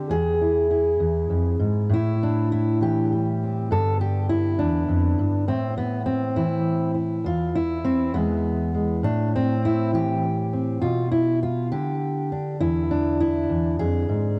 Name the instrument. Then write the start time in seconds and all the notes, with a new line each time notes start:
steel-string acoustic guitar
Already playing: D3 G4
0.10 E2 G#4
0.42 E4
0.71 E4
1.00 E2
1.30 F2
1.59 G#2
1.89 A2
1.93 E4
2.23 D4
2.52 E4
2.81 E3 G4
3.12 G3
3.43 C4
3.71 G2 D3 B3 D4 A4
4.01 G4
4.29 E4
4.59 E2 D4
4.88 F2
5.19 G2
5.48 A2 C4
5.78 B3
6.06 C4
6.36 E3 E4
6.94 E4
7.24 E2 F4
7.55 E4
7.84 C4
8.14 E2 E3 G#3 B3
8.74 G#3
9.03 A2 D4
9.36 C4
9.65 E4
9.93 E3 G4
10.53 C4
10.81 B2 F4
11.11 E4
11.43 F4
11.72 D3 G4
12.32 D4
12.60 E2 E4
12.91 D4
13.20 E4
13.49 E2
13.79 F2 G#4
14.09 G#2